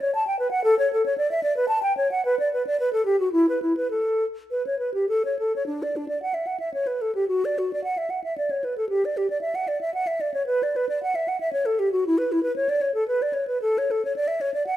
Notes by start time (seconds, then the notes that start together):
0.01 C#5
0.15 A5
0.27 G5
0.39 B4
0.51 F#5
0.64 A4
0.79 C#5
0.93 A4
1.06 C#5
1.18 D5
1.31 E5
1.43 D5
1.57 B4
1.68 A5
1.83 G5
1.97 C#5
2.11 F#5
2.25 B4
2.39 D5
2.53 B4
2.67 D5
2.80 B4
2.93 A4
3.05 G4
3.20 F#4
3.32 E4
3.49 B4
3.62 E4
3.77 B4
3.91 A4
4.51 B4
4.67 C#5
4.79 B4
4.94 G4
5.09 A4
5.25 C#5
5.39 A4
5.56 C#5
5.67 D4
5.83 D5
5.96 D4
6.08 D5
6.22 F#5
6.34 E5
6.47 F#5
6.60 E5
6.74 C#5
6.87 B4
7.01 A4
7.15 G4
7.28 F#4
7.45 D5
7.58 F#4
7.73 D5
7.84 F#5
7.98 E5
8.10 F#5
8.24 E5
8.38 D5
8.50 C#5
8.64 B4
8.78 A4
8.89 G4
9.05 D5
9.17 G4
9.30 D5
9.41 E5
9.55 F#5
9.68 D5
9.81 E5
9.94 F#5
10.07 E5
10.21 D5
10.34 C#5
10.46 B4
10.63 D5
10.76 B4
10.89 D5
11.03 F#5
11.15 E5
11.28 F#5
11.40 E5
11.53 C#5
11.66 A4
11.79 G4
11.92 F#4
12.07 E4
12.18 B4
12.32 E4
12.43 B4
12.56 C#5
12.69 D5
12.81 C#5
12.94 A4
13.08 B4
13.22 D5
13.33 C#5
13.47 B4
13.62 A4
13.78 C#5
13.91 A4
14.05 C#5
14.16 D5
14.28 E5
14.41 C#5
14.54 D5
14.67 F#5